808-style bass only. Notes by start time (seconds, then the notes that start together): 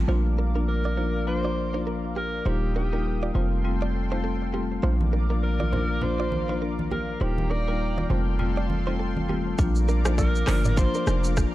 0.08 A#1
2.46 D#1
3.35 F1
4.83 A#1
7.21 D#1
8.10 F1
9.59 A#1
10.48 G1
11.07 F1